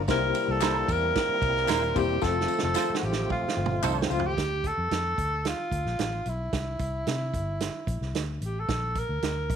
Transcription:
0.08 0.31 C2 loud
0.08 0.84 C3 medium
0.08 2.20 G3 medium
0.08 2.20 A#3 medium
0.08 0.87 A#3 medium
0.08 0.87 C4 medium
0.08 4.33 C4 medium
0.08 2.20 E4 medium
0.08 0.87 E4 medium
0.08 0.87 G4 medium
0.08 0.52 A#4 loud
0.08 0.87 C5 medium
0.08 kick loud
0.08 snare loud
0.08 ride medium
0.08 tambourine medium
0.34 ride medium
0.34 tambourine medium
0.48 0.82 C2 loud
0.48 0.93 A4 loud
0.61 0.75 E4 medium
0.61 0.75 A#4 medium
0.61 0.76 C5 loud
0.61 snare loud
0.61 clap medium
0.61 ride medium
0.61 tambourine loud
0.88 1.11 E2 loud
0.88 1.99 A#4 loud
0.88 kick loud
0.88 ride medium
0.88 tambourine medium
1.16 kick medium
1.16 snare loud
1.16 ride medium
1.16 tambourine soft
1.29 muted fingered electric bass stroke medium
1.42 1.65 C2 medium
1.42 kick loud
1.42 ride medium
1.42 tambourine soft
1.57 snare soft
1.68 1.92 D#1 medium
1.68 1.82 E4 medium
1.68 1.82 A#4 medium
1.68 1.82 C5 medium
1.68 snare loud
1.68 clap medium
1.68 ride medium
1.68 tambourine loud
1.95 2.19 E1 medium
1.95 2.15 A#3 medium
1.95 2.15 C4 medium
1.95 2.16 E4 medium
1.95 2.15 G4 medium
1.95 2.25 G4 loud
1.95 2.16 C5 medium
1.95 kick medium
1.95 ride medium
1.95 tambourine medium
2.22 2.45 F1 loud
2.22 4.35 F3 medium
2.22 4.35 A3 medium
2.22 3.01 C4 medium
2.22 3.01 F4 medium
2.22 4.35 F4 medium
2.22 3.01 A4 medium
2.22 2.63 A4 loud
2.22 kick loud
2.22 snare medium
2.22 tambourine medium
2.41 snare medium
2.48 tambourine medium
2.58 snare medium
2.63 2.74 F1 medium
2.63 2.99 A4 medium
2.75 2.89 F4 medium
2.75 2.90 A4 medium
2.75 2.90 C5 medium
2.75 snare medium
2.75 clap medium
2.75 tambourine loud
2.90 muted fingered electric bass stroke soft
2.95 3.06 F#4 medium
2.95 snare medium
3.03 3.26 A1 medium
3.03 3.30 G4 medium
3.03 tambourine medium
3.13 snare medium
3.30 4.07 F4 medium
3.30 kick medium
3.30 mid tom medium
3.44 muted fingered electric bass stroke soft
3.48 snare medium
3.57 3.79 G1 medium
3.66 mid tom loud
3.83 4.06 C2 loud
3.83 3.97 F4 medium
3.83 3.97 A4 medium
3.83 3.97 C5 loud
3.83 clap medium
3.83 floor tom medium
3.83 tambourine medium
4.02 snare loud
4.10 4.33 C#2 medium
4.10 4.30 C4 medium
4.10 4.30 F4 medium
4.10 4.28 F4 loud
4.10 4.30 C5 medium
4.10 tambourine medium
4.20 floor tom loud
4.26 4.68 G4 loud
4.37 4.71 D2 loud
4.37 kick medium
4.37 snare loud
4.37 closed hi-hat medium
4.64 5.49 A4 loud
4.64 kick medium
4.64 closed hi-hat medium
4.78 4.89 F2 medium
4.91 5.14 F2 medium
4.91 snare loud
4.91 closed hi-hat medium
5.18 5.52 D2 medium
5.18 kick medium
5.18 closed hi-hat medium
5.45 6.30 F4 medium
5.45 snare medium
5.45 closed hi-hat medium
5.72 5.83 D2 medium
5.72 kick medium
5.72 closed hi-hat medium
5.85 5.97 A#1 medium
5.85 snare soft
5.99 6.22 A1 medium
5.99 snare loud
5.99 closed hi-hat medium
6.26 6.49 B1 medium
6.26 8.16 E4 medium
6.26 closed hi-hat medium
6.53 6.76 C2 medium
6.53 kick medium
6.53 snare loud
6.53 closed hi-hat medium
6.79 7.03 C2 medium
6.79 kick medium
6.79 closed hi-hat medium
7.07 7.35 C3 loud
7.07 snare loud
7.07 closed hi-hat medium
7.33 7.68 G1 medium
7.33 kick medium
7.33 closed hi-hat medium
7.60 snare medium
7.60 closed hi-hat medium
7.87 7.99 A#1 medium
7.87 kick medium
7.87 closed hi-hat medium
8.01 8.13 C2 medium
8.01 snare soft
8.14 8.38 D2 medium
8.14 snare loud
8.14 closed hi-hat medium
8.41 8.64 A1 medium
8.41 8.61 G4 medium
8.41 closed hi-hat medium
8.59 9.00 A4 medium
8.69 9.03 A#1 loud
8.69 kick loud
8.69 snare loud
8.69 closed hi-hat medium
8.95 9.56 A#4 medium
8.95 kick medium
8.95 closed hi-hat medium
9.09 9.21 D2 medium
9.22 9.51 D2 medium
9.22 snare loud
9.22 closed hi-hat medium
9.50 9.56 A#1 medium
9.50 kick loud
9.50 closed hi-hat medium

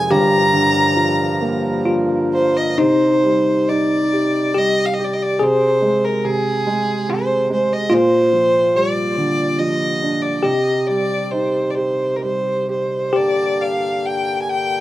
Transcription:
0.00 0.12 C3 medium
0.00 0.12 G#3 medium
0.00 0.13 C4 medium
0.00 0.18 G#4 loud
0.00 0.13 G#5 loud
0.10 2.75 G1 medium
0.10 2.75 G2 medium
0.10 2.76 G2 medium
0.10 2.76 F3 medium
0.10 1.91 G4 loud
0.10 2.76 A#4 medium
0.10 1.87 A#5 loud
0.53 2.29 D3 medium
0.96 2.75 F3 medium
1.41 2.75 A#3 soft
1.85 2.74 F4 medium
2.33 2.58 C5 medium
2.57 2.80 D#5 medium
2.78 5.36 C3 medium
2.78 4.51 D#4 medium
2.78 3.70 C5 medium
3.23 4.55 G3 soft
3.68 5.36 D#4 soft
3.68 4.59 D5 medium
4.12 4.98 G4 soft
4.54 5.38 G3 soft
4.54 5.42 G4 medium
4.54 4.87 D#5 loud
4.86 4.95 F5 medium
4.94 5.06 D#5 medium
4.99 5.39 G4 medium
5.04 5.15 D5 medium
5.13 5.24 D#5 medium
5.22 5.44 D5 medium
5.39 6.23 C3 medium
5.39 7.99 G#4 loud
5.39 6.06 C5 medium
5.82 6.65 G#3 medium
6.04 6.27 A#4 medium
6.24 7.07 C3 medium
6.24 7.11 G#4 medium
6.67 7.49 G#3 medium
7.09 7.89 C3 medium
7.09 7.51 C5 medium
7.50 7.90 G#3 soft
7.50 7.74 C5 medium
7.73 7.95 D#5 medium
7.90 10.39 A#2 medium
7.90 10.50 F4 medium
7.90 8.78 C5 loud
8.33 9.58 F3 soft
8.75 10.40 G3 medium
8.75 9.60 D5 medium
9.18 10.40 D3 medium
9.59 10.41 F3 medium
9.59 10.23 D#5 medium
10.02 10.43 D4 soft
10.22 10.45 D5 medium
10.43 13.10 C3 medium
10.43 12.64 G4 medium
10.43 10.88 D#5 medium
10.87 12.20 G3 soft
10.87 11.33 D5 medium
11.32 13.11 D#4 soft
11.32 11.72 C5 medium
11.70 11.77 D5 soft
11.75 12.67 G4 soft
11.75 12.18 C5 medium
12.16 12.24 A#4 soft
12.22 13.11 G3 soft
12.22 12.69 C5 medium
12.68 13.13 G4 soft
12.68 13.18 C5 medium
13.13 14.80 G2 medium
13.13 14.80 D3 medium
13.13 14.80 A#3 medium
13.13 14.80 G4 medium
13.13 13.63 D5 medium
13.61 14.07 F5 medium
14.06 14.41 G5 medium
14.42 14.51 G#5 medium
14.50 14.80 G5 medium

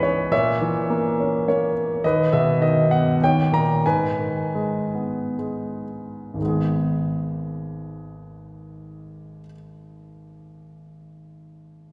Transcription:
0.00 0.29 C#2 soft
0.00 0.34 G#2 soft
0.00 0.34 C#3 soft
0.00 0.29 E3 soft
0.00 0.34 G#4 medium
0.00 0.35 B4 medium
0.00 0.03 C#5 medium
0.00 0.31 C#5 medium
0.00 0.35 D#5 medium
0.00 0.32 E5 medium
0.32 1.99 A#2 medium
0.32 1.47 C#5 medium
0.32 1.72 E5 medium
0.61 1.72 E3 soft
0.90 1.47 A#3 soft
1.20 2.02 C#4 soft
1.48 2.02 A#3 soft
1.48 2.00 C#5 medium
2.04 3.17 D#2 medium
2.04 2.87 B4 soft
2.04 2.33 D#5 medium
2.33 3.18 B2 soft
2.33 2.62 E5 medium
2.61 3.19 D#3 soft
2.61 2.89 D#5 medium
2.90 3.20 B3 soft
2.90 3.22 F#5 medium
3.21 3.83 D#2 soft
3.21 3.82 C#5 soft
3.21 3.51 G5 medium
3.52 3.83 A#2 soft
3.52 3.83 A#5 medium
3.85 6.37 G#2 soft
3.85 5.36 B4 soft
3.85 5.35 G#5 medium
4.19 5.84 D#3 soft
4.55 5.37 G#3 soft
4.95 6.37 B3 soft
5.39 6.37 G#3 soft
6.33 9.38 G#1 soft
6.33 9.40 D#2 soft
6.39 9.44 D#3 soft
6.39 9.46 G#3 soft
6.45 9.50 B3 soft
6.45 9.53 G#4 soft

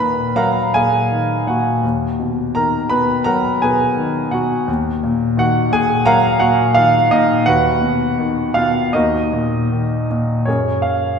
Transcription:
0.00 1.80 D#2 soft
0.00 0.74 A#2 soft
0.00 1.07 D#3 soft
0.00 0.37 A#4 medium
0.00 0.34 B4 medium
0.00 0.36 A#5 medium
0.00 0.37 B5 medium
0.36 1.80 F#3 medium
0.36 0.72 A#4 medium
0.36 0.71 F5 medium
0.36 0.71 F#5 medium
0.36 0.75 A#5 medium
0.74 1.45 A#2 soft
0.74 1.45 G#4 medium
0.74 1.45 F5 medium
0.74 1.50 G#5 medium
1.11 1.82 D#3 soft
1.47 1.83 A#2 soft
1.47 1.82 F#4 soft
1.47 1.81 F#5 medium
1.84 4.64 D#2 medium
2.20 2.90 B2 soft
2.55 3.94 D#3 medium
2.55 2.89 A#4 medium
2.55 2.88 A#5 medium
2.90 3.60 B2 medium
2.90 3.25 B4 medium
2.90 3.27 B5 medium
3.24 4.64 F#3 soft
3.24 3.60 A#4 medium
3.24 3.60 F#5 medium
3.24 3.59 A#5 medium
3.62 4.31 B2 medium
3.62 4.29 G#4 medium
3.62 4.29 B4 medium
3.62 4.34 G#5 medium
3.97 4.65 D#3 soft
4.31 4.67 B2 medium
4.31 4.66 F#4 medium
4.31 4.65 F#5 medium
4.68 7.43 D#2 medium
5.03 5.69 A#2 medium
5.37 6.71 D#3 medium
5.37 5.70 F#4 medium
5.37 5.73 F#5 medium
5.71 6.39 A#2 medium
5.71 6.04 G#4 medium
5.71 6.07 G#5 medium
6.05 7.42 F#3 medium
6.05 6.38 A#4 medium
6.05 6.38 F5 medium
6.05 6.38 F#5 medium
6.05 6.41 A#5 loud
6.40 7.10 A#2 medium
6.40 6.73 F#4 medium
6.40 6.76 F#5 medium
6.75 7.45 D#3 medium
6.75 7.09 F4 medium
6.75 7.12 F5 medium
7.11 7.45 A#2 medium
7.11 7.45 D#4 medium
7.11 7.48 D#5 medium
7.46 8.90 D#2 medium
7.46 8.53 F#4 medium
7.46 8.53 B4 medium
7.46 8.60 F#5 medium
7.81 8.55 B2 medium
8.19 8.92 D#3 medium
8.54 8.93 B2 medium
8.54 8.92 F4 medium
8.54 8.94 F5 medium
8.93 10.43 D#2 medium
8.93 10.06 D#4 medium
8.93 10.06 F#4 medium
8.93 10.06 A#4 medium
8.93 10.05 D#5 medium
9.33 10.09 A#2 medium
9.72 10.46 D#3 medium
10.10 10.46 A#2 medium
10.45 11.19 F#2 soft
10.45 11.19 G#4 soft
10.45 11.19 A#4 soft
10.45 10.85 C#5 medium
10.82 11.19 F5 medium

